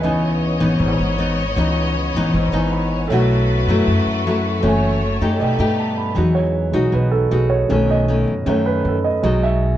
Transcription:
0.00 C#2 C#3 E3 B3 E4 B4 C#5 D#5
0.04 B3 D#4 G#5
0.60 G#1 E3 B3 D#4
0.79 G#1 G#2
0.99 G#1
1.18 E3 B3 D#4
1.56 C#2 C#3 E3 B3 D#4
2.15 G#1 E3 B3 D#4
2.34 G#1 G#2
2.52 G#1 E3 B3 D#4 E4 B4 D#5 G#5
2.72 B5
3.08 B1 F#3 A3 F#4 A4 B4 C#5 E5
3.12 B2 A3 E4 F#5
3.67 F#2 F#3 A3 E4
3.87 F#2
4.06 F#2
4.27 F#3 A3 E4
4.61 F#1 F#2 E3 A3 C#4 A4 C#5
4.65 E5 G#5
5.21 F#2 A3 D#4 G4
5.37 B1 A3 A4 D5 D#5
5.41 B2 D#4 G4 B4 G5
5.59 G2 A3 D#4 G4 G5
5.79 A5
5.98 B5
6.15 E2 E3 F#3 G#3 D#4 F#4
6.35 C#5
6.71 B1 F#3 G#3 D#4 F#4
6.92 B1 B2 B4
7.11 A4
7.31 B1 G#3 D#4 F#4 G#4
7.50 C#5
7.69 B1 B2 D#3 A3 C#4
7.91 D#5
8.08 D#3 A3 C#4
8.27 F#2
8.46 F#2 D#3 A3 C#4 C#5
8.66 B4
8.85 F#2 A4
9.04 D#5
9.22 B1 B2 F#3 G#3 D#4 D#5
9.43 E5

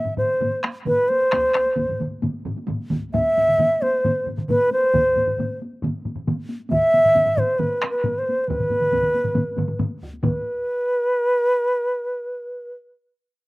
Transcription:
Already playing: E5
0.05 taiko low-mid, taiko mid, taiko high
0.17 C5, taiko low-mid, taiko mid, taiko high
0.30 taiko high
0.41 taiko low-mid, taiko mid, taiko high
0.63 taiko rim, taiko high
0.85 B4, taiko low-mid, taiko mid, taiko high
0.99 taiko high
1.09 C5, taiko high
1.22 taiko high
1.31 taiko rim, taiko, taiko high
1.44 taiko high
1.54 taiko rim
1.55 taiko rim, taiko high
1.66 taiko high
1.76 taiko, taiko low-mid, taiko mid, taiko high
1.89 taiko low-mid, taiko mid
2.00 taiko low-mid, taiko mid, taiko high
2.11 taiko high
2.22 taiko low-mid, taiko mid, taiko high
2.34 taiko high
2.45 taiko low-mid, taiko mid, taiko high
2.57 taiko high
2.67 taiko low-mid, taiko mid, taiko high
2.79 taiko high
2.90 taiko, taiko low-mid, taiko mid, taiko high
3.02 taiko high
3.13 E5, taiko, taiko low-mid, taiko mid, taiko high
3.26 taiko high
3.37 taiko low-mid, taiko mid, taiko high
3.48 taiko low-mid, taiko mid
3.58 taiko low-mid, taiko mid, taiko high
3.82 C5, taiko high
3.94 taiko high
4.05 taiko low-mid, taiko mid, taiko high
4.26 taiko low-mid, taiko mid, taiko high
4.37 taiko low-mid, taiko mid
4.48 B4, taiko low-mid, taiko mid, taiko high
4.72 C5, taiko high
4.84 taiko high
4.94 taiko, taiko low-mid, taiko mid, taiko high
5.16 taiko low-mid, taiko mid, taiko high
5.27 taiko low-mid, taiko mid, taiko high
5.38 taiko low-mid, taiko mid, taiko high
5.50 taiko high
5.62 taiko high
5.73 taiko high
5.83 taiko low-mid, taiko mid, taiko high
5.96 taiko high
6.05 taiko low-mid, taiko mid, taiko high
6.16 taiko low-mid, taiko mid
6.27 taiko low-mid, taiko mid, taiko high
6.39 taiko high
6.49 taiko high
6.59 taiko high
6.70 E5, taiko, taiko low-mid, taiko mid, taiko high
6.94 taiko low-mid, taiko mid, taiko high
7.05 taiko low-mid, taiko mid, taiko high
7.15 taiko low-mid, taiko mid, taiko high
7.27 taiko low-mid, taiko mid
7.37 C5, taiko low-mid, taiko mid, taiko high
7.49 taiko high
7.59 B4, taiko low-mid, taiko mid, taiko high
7.82 taiko rim, taiko high
7.90 B4
8.04 taiko low-mid, taiko mid, taiko high
8.18 C5, taiko high
8.29 taiko high
8.40 taiko high
8.44 C5, taiko mid
8.48 B4, taiko, taiko low-mid, taiko high
8.59 taiko low-mid, taiko mid, taiko high
8.70 taiko low-mid, taiko mid, taiko high
8.80 taiko low-mid, taiko mid, taiko high
8.92 taiko, taiko low-mid, taiko mid, taiko high
9.03 taiko low-mid, taiko mid, taiko high
9.14 taiko high
9.24 taiko low-mid, taiko mid, taiko high
9.35 taiko low-mid, taiko mid, taiko high
9.57 taiko low-mid, taiko mid, taiko high
9.68 taiko low-mid, taiko mid
9.79 taiko low-mid, taiko mid, taiko high
9.91 taiko high
10.03 taiko
10.14 taiko high
10.23 B4, taiko, taiko low-mid, taiko mid, taiko high

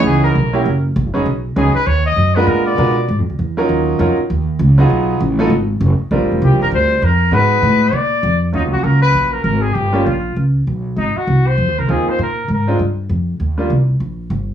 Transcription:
Already playing: E3 B3 C#4 D#4 G#4
0.04 C#2 G#4
0.24 A#4
0.35 B1
0.53 F#3 A#3 C#4 E4 G4
0.65 F#1
0.96 A#1
1.06 F#1
1.14 E1 F#3 B3 C#4 D#4 G#4
1.26 B1
1.56 C#2 F#3 B3 C#4 D#4 G#4
1.75 B4, muted upright bass stroke
1.86 D#2 C#5
2.06 D#5
2.16 F#2
2.35 G#3 B3 D4 F4 A#4 B4
2.47 A#2 A#4
2.66 D5
2.77 B2 G#3 B3 D4 F4 A#4
3.08 G#2
3.19 F2
3.30 D2
3.39 E2
3.57 F#3 C#4 D#4 F4 A#4
3.69 D#2
3.99 F2 F#3 C#4 D#4 F4 A#4
4.17 muted upright bass stroke
4.30 D#2
4.59 C#2
4.78 F#3 B3 D#4 F4 G#4
4.90 B1
5.20 A1
5.39 F#3 B3 D#4 F4 A4
5.50 G#1
5.81 F#1
5.99 muted upright bass stroke
6.11 A#1 G3 C4 D4 F4 A#4
6.22 G1
6.32 F1
6.42 C2 G4
6.52 A#1
6.62 G1 A#4
6.72 D2 C5
7.02 F2 A#4
7.31 G#2 G#3 B3 D#4 F#4 B4
7.62 A2
7.93 A#2 D5
8.23 F2
8.53 D#2 A#2 F#3 C#4 D#4 F4
8.64 C#2
8.72 A#1 F#4
8.84 C#2 A#4
9.02 B4
9.14 A#1
9.32 A#4
9.44 G#1 A#4
9.62 G#4
9.74 G1 G4
9.93 G3 A#3 C#4 F4
10.05 A#1 F4
10.36 C#2
10.67 B1
10.97 G#1 D#4
11.15 F#4, muted upright bass stroke
11.27 C2
11.47 C5
11.58 F2
11.68 D#2
11.79 C2 A#4
11.88 D#2 A#3 C4 D#4 F4 G#4
12.07 C5, muted upright bass stroke
12.19 A#2 A#4
12.48 G#2
12.53 A#4
12.67 G#3 C4 D4 F4
12.79 G2
13.09 F2
13.40 D#2
13.58 G3 A#3 D4 F4
13.70 C2
14.00 A#1
14.30 G1

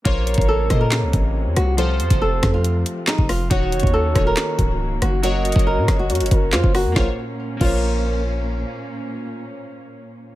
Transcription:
0.04 A#1 C3 C#3 A#3 F4 A#4 C5 C#5, kick, closed hi-hat
0.27 closed hi-hat
0.34 A1, kick, closed hi-hat
0.41 closed hi-hat
0.48 A4
0.69 A#2 A#3 F4 C5 D#5, kick, cross-stick, closed hi-hat
0.81 A#4
0.92 snare, clap, closed hi-hat
1.03 C2
1.13 A1, kick, closed hi-hat
1.46 F2
1.56 C2 F#4, cross-stick, closed hi-hat
1.77 F3 A3 F4 A4 C5, closed hi-hat
2.00 F2, closed hi-hat
2.10 F1 F3 F4 A4 C5, kick, closed hi-hat
2.22 A4
2.43 F2, kick, cross-stick, snare, closed hi-hat
2.54 F4
2.65 closed hi-hat
2.86 closed hi-hat
3.07 D#4, snare, clap
3.18 F1, kick
3.29 F4, cross-stick, open hi-hat
3.50 D#1 D#3 A#3 C#4 D#4 F#4 C#5, kick, closed hi-hat
3.72 F1, closed hi-hat
3.80 D#2, kick, closed hi-hat
3.87 closed hi-hat
3.94 A4
4.15 D#1 D#3 D#4 F#4 C#5, kick, cross-stick, closed hi-hat
4.27 A#4
4.37 snare, clap, closed hi-hat
4.59 C#1, kick, closed hi-hat
5.02 F#1 F#4, cross-stick, closed hi-hat
5.22 F#3 C#4 F#4 A#4 C#5 D#5, closed hi-hat
5.45 closed hi-hat
5.52 F#1 F#3 F#4 A#4, kick, closed hi-hat
5.57 D#5, closed hi-hat
5.67 A#4
5.77 A#2
5.88 F#1, kick, cross-stick, snare, closed hi-hat
5.99 F#4
6.10 F#2 C#5, closed hi-hat
6.15 closed hi-hat
6.20 F#1, closed hi-hat
6.26 closed hi-hat
6.31 F#1 A#4, kick, closed hi-hat
6.53 F#2 F4 C5, snare, clap
6.64 F#1, kick
6.74 F#4 A#4, cross-stick, open hi-hat
6.85 F#2
6.92 A#2 A#3 C#4 F4
6.96 A#1 F4 A#4 C5 C#5, kick, snare
7.57 A#1 A#3 F4, kick, crash
7.61 A#4 C5 C#5

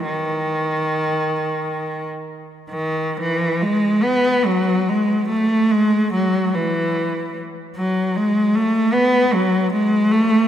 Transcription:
0.06 D#3
2.70 D#3
3.21 E3
3.62 G#3
4.03 B3
4.45 F#3
4.88 G#3
5.29 A3
5.72 G#3
6.13 F#3
6.55 E3
7.76 F#3
8.16 G#3
8.55 A3
8.94 B3
9.34 F#3
9.73 G#3
10.11 A3

